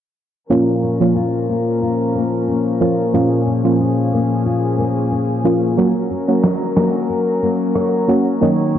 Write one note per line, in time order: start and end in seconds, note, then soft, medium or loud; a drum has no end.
0.50 3.13 A#2 medium
0.50 0.96 F3 medium
0.50 5.74 F3 medium
0.50 0.96 A#3 medium
0.50 0.96 C#4 medium
0.50 8.37 C#4 medium
0.50 0.96 F4 loud
0.50 3.11 A#4 medium
0.83 2.48 C#4 medium
1.00 1.13 F3 medium
1.00 1.14 A#3 medium
1.00 1.14 C#4 medium
1.00 1.14 F4 medium
1.16 1.81 F4 medium
1.49 2.15 A#3 medium
1.82 2.80 F4 medium
2.15 4.12 A#3 medium
2.48 3.47 C#4 medium
2.80 3.11 F3 medium
2.80 3.11 A#3 medium
2.80 3.11 C#4 medium
2.80 3.79 F4 medium
2.80 3.11 F4 medium
3.13 5.78 A#2 medium
3.13 3.60 F3 medium
3.13 3.60 A#3 medium
3.13 3.60 C#4 medium
3.13 3.60 F4 loud
3.13 5.75 G#4 medium
3.47 5.11 C#4 medium
3.64 3.77 F3 medium
3.64 3.77 A#3 medium
3.64 3.77 C#4 medium
3.64 3.78 F4 medium
3.80 4.45 F4 medium
4.13 4.78 A#3 medium
4.46 5.43 F4 medium
4.79 6.76 A#3 medium
5.12 6.10 C#4 medium
5.44 5.75 F3 medium
5.44 5.75 A#3 medium
5.44 5.75 C#4 medium
5.44 5.85 F4 medium
5.44 5.75 F4 medium
5.77 6.24 F#3 medium
5.77 8.41 F#3 medium
5.77 8.79 F#3 medium
5.77 6.24 A#3 medium
5.77 6.24 C#4 medium
5.77 6.24 F#4 loud
5.77 8.39 A#4 medium
6.10 7.75 C#4 medium
6.28 6.41 F#3 medium
6.28 6.41 A#3 medium
6.28 6.41 C#4 medium
6.28 6.41 F#4 medium
6.44 7.09 F#4 medium
6.44 cross-stick medium
6.44 snare loud
6.77 7.42 A#3 medium
6.77 cross-stick medium
6.77 snare loud
7.10 8.08 F#4 medium
7.42 8.79 A#3 medium
7.75 8.74 C#4 medium
7.75 cross-stick medium
8.08 8.39 F#3 medium
8.08 8.39 A#3 medium
8.08 8.39 C#4 medium
8.08 8.39 F#4 medium
8.08 8.79 F#4 medium
8.41 8.79 D#3 medium
8.41 8.79 F#3 medium
8.41 8.79 A#3 medium
8.41 8.79 C#4 medium
8.41 8.79 D#4 medium
8.41 8.79 D#4 loud
8.41 8.79 C#5 medium
8.75 8.79 C#4 medium